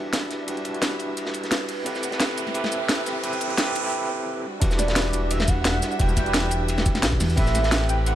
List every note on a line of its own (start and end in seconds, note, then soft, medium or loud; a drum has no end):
0.00 0.30 E1 medium
0.00 1.83 G3 medium
0.00 0.46 D4 medium
0.00 1.83 D4 medium
0.00 0.47 E4 medium
0.00 0.48 F#4 medium
0.00 0.49 G4 medium
0.00 0.50 B4 medium
0.00 1.83 E5 medium
0.00 0.50 F#5 loud
0.00 riser medium
0.13 snare loud
0.13 closed hi-hat medium
0.13 ride medium
0.31 snare soft
0.31 closed hi-hat medium
0.31 ride medium
0.46 0.98 E1 loud
0.46 0.70 D4 medium
0.46 0.72 E4 medium
0.46 0.72 F#4 medium
0.46 0.73 G4 medium
0.46 0.73 B4 medium
0.46 1.00 D5 medium
0.46 closed hi-hat medium
0.46 ride medium
0.57 closed hi-hat soft
0.65 closed hi-hat medium
0.65 ride medium
0.71 1.82 D4 medium
0.71 1.83 E4 medium
0.71 1.84 F#4 medium
0.71 closed hi-hat soft
0.76 1.85 G4 medium
0.76 1.86 B4 medium
0.82 snare loud
0.82 closed hi-hat medium
0.82 ride medium
0.91 ride soft
0.99 1.33 E1 medium
0.99 closed hi-hat medium
0.99 ride medium
1.17 closed hi-hat medium
1.17 ride medium
1.26 snare medium
1.34 closed hi-hat medium
1.34 ride medium
1.44 snare soft
1.44 closed hi-hat soft
1.51 1.88 B4 loud
1.51 snare loud
1.51 closed hi-hat medium
1.51 ride medium
1.68 closed hi-hat medium
1.68 open hi-hat medium
1.84 2.36 A1 loud
1.84 2.08 C4 medium
1.84 4.42 C4 medium
1.84 2.10 E4 medium
1.84 2.10 G4 medium
1.84 4.42 G4 medium
1.84 2.11 A4 medium
1.84 4.42 B4 medium
1.84 2.11 B4 loud
1.84 2.05 G5 loud
1.84 closed hi-hat medium
1.84 ride medium
1.95 snare soft
1.95 shaker soft
2.03 2.22 F#5 loud
2.03 closed hi-hat medium
2.03 ride medium
2.03 shaker medium
2.09 2.52 C4 medium
2.09 2.53 E4 medium
2.09 2.54 G4 medium
2.09 snare medium
2.09 closed hi-hat soft
2.14 2.54 A4 medium
2.14 2.55 B4 medium
2.20 3.93 E5 loud
2.20 snare loud
2.20 closed hi-hat medium
2.20 ride medium
2.29 snare soft
2.37 2.71 A1 medium
2.37 closed hi-hat medium
2.37 ride medium
2.37 shaker medium
2.47 snare soft
2.53 2.77 C4 medium
2.53 2.79 E4 medium
2.53 2.79 G4 medium
2.53 2.80 A4 medium
2.53 2.80 B4 loud
2.53 closed hi-hat medium
2.53 ride medium
2.64 snare medium
2.72 3.05 A1 medium
2.72 closed hi-hat medium
2.72 ride medium
2.72 shaker medium
2.78 3.21 C4 medium
2.78 3.22 E4 medium
2.78 3.23 G4 medium
2.83 3.23 A4 medium
2.83 3.24 B4 medium
2.89 snare loud
2.89 closed hi-hat medium
2.89 ride medium
3.06 snare soft
3.06 closed hi-hat medium
3.06 ride medium
3.06 shaker medium
3.23 3.74 A1 loud
3.23 3.46 C4 loud
3.23 3.48 E4 medium
3.23 3.48 G4 medium
3.23 3.49 A4 medium
3.23 3.49 B4 loud
3.23 closed hi-hat medium
3.23 ride medium
3.33 closed hi-hat soft
3.33 shaker soft
3.41 closed hi-hat medium
3.41 ride medium
3.41 shaker medium
3.47 3.56 C4 medium
3.47 3.56 E4 medium
3.47 3.57 G4 medium
3.47 closed hi-hat soft
3.52 3.58 A4 medium
3.52 3.59 B4 loud
3.57 3.81 C4 loud
3.57 3.82 E4 medium
3.57 3.83 G4 medium
3.57 3.83 A4 medium
3.57 3.83 B4 loud
3.57 snare loud
3.57 closed hi-hat medium
3.57 ride medium
3.67 ride soft
3.75 3.93 A1 medium
3.75 closed hi-hat medium
3.75 ride medium
3.75 shaker medium
3.82 3.90 C4 medium
3.82 3.91 E4 medium
3.82 3.92 G4 medium
3.86 3.92 A4 medium
3.86 3.93 B4 loud
4.45 4.61 G3 medium
4.45 4.61 D4 medium
4.45 4.62 F#4 medium
4.60 5.12 E1 loud
4.60 7.35 G3 medium
4.60 4.84 D4 medium
4.60 7.35 D4 medium
4.60 4.86 E4 medium
4.60 4.86 F#4 medium
4.60 4.86 G4 medium
4.60 4.87 B4 loud
4.60 7.35 E5 medium
4.60 kick loud
4.60 closed hi-hat loud
4.60 ride medium
4.71 snare soft
4.71 shaker soft
4.79 5.32 D5 loud
4.79 snare soft
4.79 closed hi-hat medium
4.79 ride medium
4.79 shaker medium
4.85 5.96 D4 medium
4.85 5.97 E4 medium
4.85 5.98 F#4 medium
4.85 snare medium
4.85 closed hi-hat soft
4.90 5.99 G4 medium
4.90 5.99 B4 medium
4.96 snare loud
4.96 closed hi-hat loud
4.96 ride medium
5.05 snare soft
5.13 5.47 E1 medium
5.13 closed hi-hat medium
5.13 ride medium
5.13 shaker medium
5.31 5.50 E5 loud
5.31 closed hi-hat medium
5.31 ride medium
5.40 snare medium
5.48 5.81 E1 medium
5.48 6.02 F#5 loud
5.48 kick loud
5.48 closed hi-hat medium
5.48 ride medium
5.48 shaker medium
5.65 snare loud
5.65 closed hi-hat medium
5.65 ride medium
5.82 snare soft
5.82 closed hi-hat medium
5.82 ride medium
5.82 shaker medium
5.91 shaker soft
5.98 6.50 E1 loud
5.98 6.22 D4 medium
5.98 6.24 E4 medium
5.98 6.24 F#4 medium
5.98 6.24 G4 medium
5.98 6.25 B4 medium
5.98 7.03 G5 loud
5.98 kick loud
5.98 closed hi-hat medium
5.98 ride medium
6.09 shaker soft
6.17 kick medium
6.17 snare soft
6.17 closed hi-hat medium
6.17 ride medium
6.17 shaker medium
6.23 7.34 D4 medium
6.23 7.35 E4 medium
6.23 closed hi-hat soft
6.28 7.37 G4 medium
6.28 7.37 B4 medium
6.34 snare loud
6.34 closed hi-hat loud
6.34 ride medium
6.43 ride soft
6.51 7.05 E1 medium
6.51 closed hi-hat medium
6.51 ride medium
6.51 shaker medium
6.68 closed hi-hat medium
6.68 ride medium
6.78 snare medium
6.86 kick loud
6.86 closed hi-hat medium
6.86 ride medium
6.86 shaker medium
6.95 snare soft
6.95 snare medium
6.95 closed hi-hat soft
7.03 7.19 B1 medium
7.03 snare loud
7.03 closed hi-hat medium
7.03 ride medium
7.12 kick medium
7.20 7.36 E2 medium
7.20 snare medium
7.20 closed hi-hat medium
7.20 open hi-hat medium
7.20 shaker medium
7.30 shaker soft
7.36 7.88 A1 loud
7.36 7.60 C4 medium
7.36 8.15 C4 medium
7.36 7.62 E4 medium
7.36 7.62 G4 medium
7.36 8.15 G4 medium
7.36 7.62 A4 medium
7.36 7.63 B4 loud
7.36 7.86 E5 loud
7.36 8.15 B5 medium
7.36 kick loud
7.36 closed hi-hat medium
7.36 ride medium
7.46 snare soft
7.46 shaker soft
7.55 snare soft
7.55 closed hi-hat medium
7.55 ride medium
7.55 shaker medium
7.61 8.15 C4 medium
7.61 8.15 E4 medium
7.61 8.15 G4 medium
7.61 snare medium
7.61 closed hi-hat soft
7.66 8.15 A4 medium
7.66 8.15 B4 loud
7.71 snare loud
7.71 closed hi-hat medium
7.71 ride medium
7.81 snare soft
7.89 8.15 A1 medium
7.89 7.97 G5 loud
7.89 closed hi-hat medium
7.89 ride medium
7.89 shaker medium
8.06 8.15 F#5 loud
8.06 closed hi-hat medium
8.06 ride medium